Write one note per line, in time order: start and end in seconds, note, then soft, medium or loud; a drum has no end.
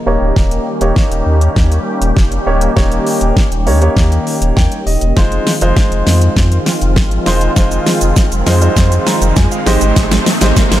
0.00 5.12 A#3 medium
0.06 0.18 D#1 loud
0.06 10.80 D#3 medium
0.06 5.12 G3 medium
0.06 0.66 A#3 medium
0.06 5.12 C#4 medium
0.06 0.67 D#4 medium
0.06 5.12 G4 medium
0.06 0.67 G4 medium
0.06 0.67 C#5 loud
0.21 0.33 D1 medium
0.36 0.59 D#1 loud
0.36 kick loud
0.36 snare medium
0.51 closed hi-hat soft
0.81 0.93 D#1 loud
0.81 1.76 A#3 medium
0.81 1.76 D#4 medium
0.81 1.76 G4 medium
0.81 1.77 C#5 medium
0.81 closed hi-hat medium
0.96 kick loud
0.96 snare medium
1.11 1.23 D#1 medium
1.11 closed hi-hat medium
1.26 1.49 D#2 loud
1.41 closed hi-hat medium
1.56 1.79 D#2 loud
1.56 kick loud
1.56 snare medium
1.72 closed hi-hat soft
2.01 2.13 D#1 medium
2.01 closed hi-hat medium
2.17 2.39 F1 medium
2.17 kick loud
2.17 snare medium
2.32 closed hi-hat medium
2.46 2.69 D1 medium
2.46 2.70 A#3 medium
2.46 2.70 D#4 medium
2.46 2.70 G4 medium
2.46 2.70 C#5 medium
2.61 closed hi-hat medium
2.76 2.99 D#1 loud
2.76 3.48 A#3 medium
2.76 3.48 D#4 medium
2.76 3.48 G4 medium
2.76 3.48 C#5 loud
2.76 kick loud
2.76 snare medium
2.92 closed hi-hat soft
3.07 open hi-hat medium
3.21 3.33 D#1 medium
3.21 closed hi-hat medium
3.37 kick loud
3.37 snare medium
3.51 3.68 D#1 medium
3.51 closed hi-hat medium
3.67 3.89 D#2 loud
3.67 3.78 A#3 medium
3.67 3.79 D#4 medium
3.67 3.79 G4 medium
3.67 3.79 C#5 medium
3.67 open hi-hat medium
3.82 4.77 A#3 medium
3.82 4.77 D#4 medium
3.82 4.77 G4 medium
3.82 4.77 C#5 medium
3.82 closed hi-hat medium
3.97 4.19 D#2 loud
3.97 kick loud
3.97 snare medium
4.12 closed hi-hat soft
4.27 open hi-hat medium
4.41 4.53 D#1 medium
4.41 closed hi-hat medium
4.57 4.68 D#2 medium
4.57 4.84 G5 medium
4.57 kick loud
4.57 snare medium
4.72 closed hi-hat medium
4.86 4.98 D#1 medium
4.86 5.14 D#5 medium
4.86 open hi-hat medium
5.01 5.13 E1 medium
5.01 closed hi-hat medium
5.16 5.39 F1 loud
5.16 5.52 G#3 medium
5.16 5.52 D#4 medium
5.16 5.52 F4 medium
5.16 5.52 C5 medium
5.16 kick loud
5.16 snare medium
5.16 riser medium
5.32 closed hi-hat soft
5.47 snare medium
5.47 open hi-hat medium
5.61 5.73 F1 medium
5.61 6.57 G#3 medium
5.61 6.57 D#4 medium
5.61 6.57 F4 medium
5.61 6.57 C5 medium
5.61 closed hi-hat medium
5.77 kick loud
5.77 snare medium
5.92 6.03 F1 loud
5.92 closed hi-hat medium
6.07 6.29 F2 loud
6.07 snare medium
6.07 open hi-hat medium
6.21 closed hi-hat medium
6.36 6.59 F2 loud
6.36 kick loud
6.36 snare medium
6.52 closed hi-hat soft
6.66 snare medium
6.66 open hi-hat medium
6.81 6.98 F1 medium
6.81 closed hi-hat medium
6.96 7.19 G#1 medium
6.96 kick loud
6.96 snare medium
7.11 closed hi-hat medium
7.26 7.49 E1 medium
7.26 7.50 G#3 medium
7.26 7.50 D#4 medium
7.26 7.50 F4 medium
7.26 7.50 C5 medium
7.26 snare medium
7.26 open hi-hat medium
7.41 closed hi-hat medium
7.56 7.79 F1 loud
7.56 8.28 G#3 medium
7.56 8.28 D#4 medium
7.56 8.28 F4 medium
7.56 8.28 C5 loud
7.56 kick loud
7.56 snare medium
7.56 shaker medium
7.71 closed hi-hat medium
7.71 shaker medium
7.86 snare loud
7.86 open hi-hat medium
7.86 shaker medium
8.01 8.13 F1 medium
8.01 closed hi-hat medium
8.01 shaker medium
8.16 kick loud
8.16 snare medium
8.16 shaker medium
8.32 8.43 F1 loud
8.32 closed hi-hat medium
8.32 shaker medium
8.47 8.69 F2 loud
8.47 8.58 G#3 medium
8.47 8.58 D#4 medium
8.47 8.59 F4 medium
8.47 8.59 C5 medium
8.47 snare medium
8.47 open hi-hat medium
8.47 shaker medium
8.61 9.56 G#3 medium
8.61 9.57 D#4 medium
8.61 9.57 F4 medium
8.61 9.57 C5 medium
8.61 closed hi-hat medium
8.61 shaker medium
8.76 8.99 F2 loud
8.76 kick loud
8.76 snare medium
8.76 shaker medium
8.92 closed hi-hat medium
8.92 shaker medium
9.06 9.34 A#5 medium
9.06 snare loud
9.06 open hi-hat medium
9.06 shaker soft
9.21 9.33 F1 loud
9.21 closed hi-hat medium
9.21 shaker medium
9.36 9.48 F2 loud
9.36 9.50 G#5 medium
9.36 kick loud
9.36 snare medium
9.36 shaker medium
9.51 9.65 F5 medium
9.51 closed hi-hat medium
9.51 shaker medium
9.66 9.78 G#1 loud
9.66 10.26 G#3 medium
9.66 10.80 D#4 medium
9.66 10.27 D#4 medium
9.66 10.27 G4 medium
9.66 10.27 C5 loud
9.66 9.95 D#5 medium
9.66 snare medium
9.66 open hi-hat medium
9.66 shaker soft
9.81 9.93 G1 medium
9.81 closed hi-hat medium
9.81 shaker medium
9.96 10.19 G#1 loud
9.96 kick loud
9.96 snare loud
9.96 shaker medium
10.11 snare loud
10.11 closed hi-hat medium
10.11 shaker medium
10.26 snare loud
10.26 open hi-hat medium
10.26 shaker medium
10.41 10.53 G#1 loud
10.41 10.80 G#3 medium
10.41 10.80 D#4 medium
10.41 10.80 G4 medium
10.41 10.80 C5 loud
10.41 snare loud
10.41 closed hi-hat medium
10.41 shaker medium
10.56 kick loud
10.56 snare loud
10.56 shaker medium
10.72 10.80 G#1 loud
10.72 snare loud
10.72 closed hi-hat medium
10.72 shaker medium